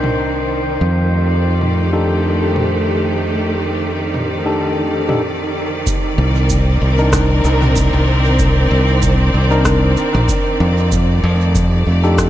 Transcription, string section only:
0, 0, Header, 1, 2, 480
1, 0, Start_track
1, 0, Tempo, 631579
1, 616, Time_signature, 4, 2, 24, 8
1, 9344, End_track
2, 0, Start_track
2, 0, Title_t, "String section"
2, 0, Program_c, 0, 48
2, 0, Note_on_c, 0, 51, 81
2, 0, Note_on_c, 0, 60, 65
2, 0, Note_on_c, 0, 70, 67
2, 0, Note_on_c, 0, 74, 88
2, 617, Note_off_c, 0, 70, 0
2, 619, Note_off_c, 0, 74, 0
2, 792, Note_on_c, 0, 57, 77
2, 837, Note_on_c, 0, 67, 71
2, 911, Note_on_c, 0, 74, 72
2, 1428, Note_off_c, 0, 60, 0
2, 4457, Note_off_c, 0, 57, 0
2, 4711, Note_on_c, 0, 70, 81
2, 4765, Note_on_c, 0, 60, 92
2, 5396, Note_off_c, 0, 67, 0
2, 8297, Note_off_c, 0, 70, 0
2, 8599, Note_on_c, 0, 57, 90
2, 8856, Note_on_c, 0, 67, 78
2, 9344, Note_off_c, 0, 51, 0
2, 9344, Note_off_c, 0, 57, 0
2, 9344, Note_off_c, 0, 60, 0
2, 9344, Note_off_c, 0, 67, 0
2, 9344, Note_off_c, 0, 74, 0
2, 9344, End_track
0, 0, End_of_file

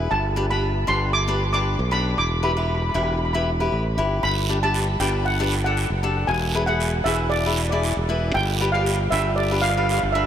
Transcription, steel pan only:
0, 0, Header, 1, 2, 480
1, 0, Start_track
1, 0, Key_signature, 1, "major"
1, 0, Tempo, 515021
1, 105, Time_signature, 4, 2, 24, 8
1, 9566, End_track
2, 0, Start_track
2, 0, Title_t, "Steel pan"
2, 0, Program_c, 0, 114
2, 101, Note_on_c, 0, 81, 97
2, 443, Note_off_c, 0, 81, 0
2, 470, Note_on_c, 0, 83, 80
2, 822, Note_on_c, 0, 84, 98
2, 835, Note_off_c, 0, 83, 0
2, 1055, Note_on_c, 0, 86, 125
2, 1070, Note_off_c, 0, 84, 0
2, 1413, Note_off_c, 0, 86, 0
2, 1424, Note_on_c, 0, 86, 100
2, 1788, Note_on_c, 0, 83, 104
2, 1792, Note_off_c, 0, 86, 0
2, 2033, Note_off_c, 0, 83, 0
2, 2033, Note_on_c, 0, 86, 104
2, 2252, Note_off_c, 0, 86, 0
2, 2276, Note_on_c, 0, 83, 82
2, 2338, Note_off_c, 0, 83, 0
2, 2352, Note_on_c, 0, 83, 56
2, 2408, Note_off_c, 0, 83, 0
2, 2419, Note_on_c, 0, 83, 62
2, 2475, Note_off_c, 0, 83, 0
2, 2488, Note_on_c, 0, 83, 49
2, 2546, Note_off_c, 0, 83, 0
2, 2562, Note_on_c, 0, 83, 65
2, 2621, Note_off_c, 0, 83, 0
2, 2632, Note_on_c, 0, 83, 55
2, 2684, Note_off_c, 0, 83, 0
2, 2695, Note_on_c, 0, 83, 58
2, 2749, Note_off_c, 0, 83, 0
2, 2761, Note_on_c, 0, 83, 55
2, 2816, Note_off_c, 0, 83, 0
2, 2827, Note_on_c, 0, 83, 63
2, 2891, Note_off_c, 0, 83, 0
2, 2907, Note_on_c, 0, 83, 54
2, 2960, Note_off_c, 0, 83, 0
2, 2972, Note_on_c, 0, 83, 54
2, 3018, Note_off_c, 0, 83, 0
2, 3029, Note_on_c, 0, 83, 58
2, 3095, Note_off_c, 0, 83, 0
2, 3106, Note_on_c, 0, 83, 73
2, 3167, Note_off_c, 0, 83, 0
2, 3944, Note_on_c, 0, 83, 116
2, 4314, Note_on_c, 0, 81, 92
2, 4320, Note_off_c, 0, 83, 0
2, 4660, Note_on_c, 0, 79, 87
2, 4676, Note_off_c, 0, 81, 0
2, 4896, Note_on_c, 0, 78, 89
2, 4909, Note_off_c, 0, 79, 0
2, 5240, Note_off_c, 0, 78, 0
2, 5260, Note_on_c, 0, 78, 81
2, 5594, Note_off_c, 0, 78, 0
2, 5847, Note_on_c, 0, 80, 106
2, 6210, Note_on_c, 0, 78, 92
2, 6232, Note_off_c, 0, 80, 0
2, 6548, Note_off_c, 0, 78, 0
2, 6562, Note_on_c, 0, 76, 88
2, 6800, Note_on_c, 0, 74, 102
2, 6820, Note_off_c, 0, 76, 0
2, 7160, Note_off_c, 0, 74, 0
2, 7171, Note_on_c, 0, 74, 77
2, 7508, Note_off_c, 0, 74, 0
2, 7776, Note_on_c, 0, 79, 104
2, 8119, Note_off_c, 0, 79, 0
2, 8127, Note_on_c, 0, 77, 85
2, 8466, Note_off_c, 0, 77, 0
2, 8485, Note_on_c, 0, 76, 102
2, 8722, Note_on_c, 0, 74, 98
2, 8741, Note_off_c, 0, 76, 0
2, 8962, Note_on_c, 0, 77, 109
2, 8980, Note_off_c, 0, 74, 0
2, 9023, Note_off_c, 0, 77, 0
2, 9034, Note_on_c, 0, 77, 83
2, 9102, Note_off_c, 0, 77, 0
2, 9113, Note_on_c, 0, 77, 87
2, 9156, Note_off_c, 0, 77, 0
2, 9167, Note_on_c, 0, 77, 72
2, 9235, Note_off_c, 0, 77, 0
2, 9246, Note_on_c, 0, 77, 80
2, 9299, Note_off_c, 0, 77, 0
2, 9311, Note_on_c, 0, 77, 70
2, 9393, Note_off_c, 0, 77, 0
2, 9435, Note_on_c, 0, 76, 101
2, 9566, Note_off_c, 0, 76, 0
2, 9566, End_track
0, 0, End_of_file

